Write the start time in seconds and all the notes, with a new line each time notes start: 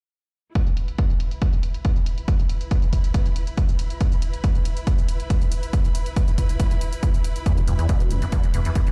0.55 E4, kick, closed hi-hat
0.60 B4
0.67 B5, closed hi-hat
0.77 closed hi-hat
0.88 closed hi-hat
0.98 kick, closed hi-hat
1.10 closed hi-hat
1.20 closed hi-hat
1.31 closed hi-hat
1.42 kick, closed hi-hat
1.53 closed hi-hat
1.63 closed hi-hat
1.74 closed hi-hat
1.85 kick, closed hi-hat
1.96 closed hi-hat
2.06 closed hi-hat
2.18 closed hi-hat
2.28 kick, closed hi-hat
2.39 closed hi-hat
2.49 closed hi-hat
2.61 closed hi-hat
2.71 kick, closed hi-hat
2.82 closed hi-hat
2.93 kick, closed hi-hat
3.04 closed hi-hat
3.14 kick, closed hi-hat
3.26 closed hi-hat
3.36 closed hi-hat
3.47 closed hi-hat
3.57 kick, closed hi-hat
3.69 closed hi-hat
3.79 closed hi-hat
3.90 closed hi-hat
4.01 kick, closed hi-hat
4.12 closed hi-hat
4.22 closed hi-hat
4.34 closed hi-hat
4.44 kick, closed hi-hat
4.55 closed hi-hat
4.65 closed hi-hat
4.77 closed hi-hat
4.87 kick, closed hi-hat
4.98 closed hi-hat
5.08 closed hi-hat
5.20 closed hi-hat
5.30 kick, closed hi-hat
5.41 closed hi-hat
5.52 closed hi-hat
5.63 closed hi-hat
5.73 kick, closed hi-hat
5.85 closed hi-hat
5.95 closed hi-hat
6.06 closed hi-hat
6.16 kick, closed hi-hat
6.28 closed hi-hat
6.38 kick, closed hi-hat
6.49 closed hi-hat
6.60 kick, closed hi-hat
6.71 closed hi-hat
6.81 closed hi-hat
6.93 closed hi-hat
7.03 kick, closed hi-hat
7.14 closed hi-hat
7.24 closed hi-hat
7.36 closed hi-hat
7.46 E2, kick, closed hi-hat
7.57 E1 E3, closed hi-hat
7.67 E1 E2, closed hi-hat
7.79 E2, closed hi-hat
7.89 B2, kick, closed hi-hat
8.00 E1, closed hi-hat
8.11 E1 F2, closed hi-hat
8.22 E2, closed hi-hat
8.32 E2, kick, closed hi-hat
8.44 E1 E2, closed hi-hat
8.54 E1 E2, closed hi-hat
8.65 E2, closed hi-hat
8.75 E1, kick, closed hi-hat
8.87 E1 E2, closed hi-hat